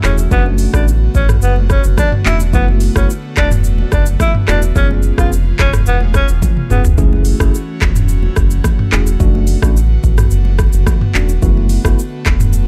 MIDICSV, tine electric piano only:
0, 0, Header, 1, 2, 480
1, 0, Start_track
1, 0, Tempo, 555556
1, 270, Time_signature, 4, 2, 24, 8
1, 10952, End_track
2, 0, Start_track
2, 0, Title_t, "Tine electric piano"
2, 0, Program_c, 0, 4
2, 27, Note_on_c, 0, 57, 79
2, 29, Note_on_c, 0, 61, 73
2, 31, Note_on_c, 0, 64, 73
2, 33, Note_on_c, 0, 68, 88
2, 167, Note_off_c, 0, 57, 0
2, 168, Note_off_c, 0, 61, 0
2, 168, Note_off_c, 0, 64, 0
2, 169, Note_off_c, 0, 68, 0
2, 268, Note_on_c, 0, 57, 92
2, 269, Note_on_c, 0, 61, 85
2, 271, Note_on_c, 0, 62, 88
2, 273, Note_on_c, 0, 66, 102
2, 604, Note_off_c, 0, 57, 0
2, 605, Note_off_c, 0, 61, 0
2, 606, Note_off_c, 0, 62, 0
2, 606, Note_off_c, 0, 66, 0
2, 633, Note_on_c, 0, 57, 85
2, 635, Note_on_c, 0, 61, 72
2, 637, Note_on_c, 0, 62, 75
2, 638, Note_on_c, 0, 66, 88
2, 763, Note_off_c, 0, 57, 0
2, 764, Note_off_c, 0, 61, 0
2, 765, Note_off_c, 0, 62, 0
2, 766, Note_off_c, 0, 66, 0
2, 1948, Note_on_c, 0, 57, 82
2, 1950, Note_on_c, 0, 61, 71
2, 1951, Note_on_c, 0, 62, 75
2, 1953, Note_on_c, 0, 66, 90
2, 2087, Note_off_c, 0, 57, 0
2, 2088, Note_off_c, 0, 61, 0
2, 2088, Note_off_c, 0, 62, 0
2, 2089, Note_off_c, 0, 66, 0
2, 2188, Note_on_c, 0, 57, 93
2, 2190, Note_on_c, 0, 59, 85
2, 2192, Note_on_c, 0, 64, 87
2, 2194, Note_on_c, 0, 66, 104
2, 2524, Note_off_c, 0, 57, 0
2, 2525, Note_off_c, 0, 59, 0
2, 2526, Note_off_c, 0, 64, 0
2, 2527, Note_off_c, 0, 66, 0
2, 2553, Note_on_c, 0, 57, 83
2, 2555, Note_on_c, 0, 59, 79
2, 2557, Note_on_c, 0, 64, 76
2, 2558, Note_on_c, 0, 66, 93
2, 2683, Note_off_c, 0, 57, 0
2, 2684, Note_off_c, 0, 59, 0
2, 2685, Note_off_c, 0, 64, 0
2, 2686, Note_off_c, 0, 66, 0
2, 3868, Note_on_c, 0, 57, 80
2, 3869, Note_on_c, 0, 59, 77
2, 3871, Note_on_c, 0, 64, 75
2, 3873, Note_on_c, 0, 66, 88
2, 4007, Note_off_c, 0, 57, 0
2, 4008, Note_off_c, 0, 59, 0
2, 4009, Note_off_c, 0, 64, 0
2, 4009, Note_off_c, 0, 66, 0
2, 4108, Note_on_c, 0, 59, 89
2, 4109, Note_on_c, 0, 61, 87
2, 4111, Note_on_c, 0, 65, 82
2, 4113, Note_on_c, 0, 68, 101
2, 4444, Note_off_c, 0, 59, 0
2, 4445, Note_off_c, 0, 61, 0
2, 4446, Note_off_c, 0, 65, 0
2, 4447, Note_off_c, 0, 68, 0
2, 4473, Note_on_c, 0, 59, 82
2, 4474, Note_on_c, 0, 61, 76
2, 4476, Note_on_c, 0, 65, 76
2, 4478, Note_on_c, 0, 68, 92
2, 4603, Note_off_c, 0, 59, 0
2, 4604, Note_off_c, 0, 61, 0
2, 4605, Note_off_c, 0, 65, 0
2, 4606, Note_off_c, 0, 68, 0
2, 5787, Note_on_c, 0, 59, 83
2, 5789, Note_on_c, 0, 61, 75
2, 5791, Note_on_c, 0, 65, 74
2, 5793, Note_on_c, 0, 68, 86
2, 5927, Note_off_c, 0, 59, 0
2, 5928, Note_off_c, 0, 61, 0
2, 5928, Note_off_c, 0, 65, 0
2, 5929, Note_off_c, 0, 68, 0
2, 6028, Note_on_c, 0, 57, 95
2, 6029, Note_on_c, 0, 61, 89
2, 6031, Note_on_c, 0, 64, 86
2, 6033, Note_on_c, 0, 68, 98
2, 6364, Note_off_c, 0, 57, 0
2, 6365, Note_off_c, 0, 61, 0
2, 6366, Note_off_c, 0, 64, 0
2, 6367, Note_off_c, 0, 68, 0
2, 6393, Note_on_c, 0, 57, 83
2, 6394, Note_on_c, 0, 61, 75
2, 6396, Note_on_c, 0, 64, 74
2, 6397, Note_on_c, 0, 68, 86
2, 6523, Note_off_c, 0, 57, 0
2, 6524, Note_off_c, 0, 61, 0
2, 6525, Note_off_c, 0, 64, 0
2, 6526, Note_off_c, 0, 68, 0
2, 7708, Note_on_c, 0, 57, 82
2, 7710, Note_on_c, 0, 61, 75
2, 7711, Note_on_c, 0, 64, 75
2, 7713, Note_on_c, 0, 68, 89
2, 7847, Note_off_c, 0, 57, 0
2, 7848, Note_off_c, 0, 61, 0
2, 7849, Note_off_c, 0, 64, 0
2, 7849, Note_off_c, 0, 68, 0
2, 7948, Note_on_c, 0, 57, 94
2, 7949, Note_on_c, 0, 61, 88
2, 7951, Note_on_c, 0, 62, 89
2, 7953, Note_on_c, 0, 66, 98
2, 8284, Note_off_c, 0, 57, 0
2, 8285, Note_off_c, 0, 61, 0
2, 8286, Note_off_c, 0, 62, 0
2, 8287, Note_off_c, 0, 66, 0
2, 8312, Note_on_c, 0, 57, 81
2, 8314, Note_on_c, 0, 61, 75
2, 8316, Note_on_c, 0, 62, 72
2, 8318, Note_on_c, 0, 66, 89
2, 8443, Note_off_c, 0, 57, 0
2, 8444, Note_off_c, 0, 61, 0
2, 8445, Note_off_c, 0, 62, 0
2, 8446, Note_off_c, 0, 66, 0
2, 9628, Note_on_c, 0, 57, 81
2, 9630, Note_on_c, 0, 61, 76
2, 9632, Note_on_c, 0, 62, 77
2, 9633, Note_on_c, 0, 66, 92
2, 9767, Note_off_c, 0, 57, 0
2, 9768, Note_off_c, 0, 61, 0
2, 9769, Note_off_c, 0, 62, 0
2, 9770, Note_off_c, 0, 66, 0
2, 9868, Note_on_c, 0, 57, 92
2, 9870, Note_on_c, 0, 59, 88
2, 9872, Note_on_c, 0, 64, 87
2, 9873, Note_on_c, 0, 66, 106
2, 10204, Note_off_c, 0, 57, 0
2, 10205, Note_off_c, 0, 59, 0
2, 10206, Note_off_c, 0, 64, 0
2, 10207, Note_off_c, 0, 66, 0
2, 10233, Note_on_c, 0, 57, 87
2, 10234, Note_on_c, 0, 59, 78
2, 10236, Note_on_c, 0, 64, 76
2, 10238, Note_on_c, 0, 66, 89
2, 10363, Note_off_c, 0, 57, 0
2, 10364, Note_off_c, 0, 59, 0
2, 10365, Note_off_c, 0, 64, 0
2, 10366, Note_off_c, 0, 66, 0
2, 10952, End_track
0, 0, End_of_file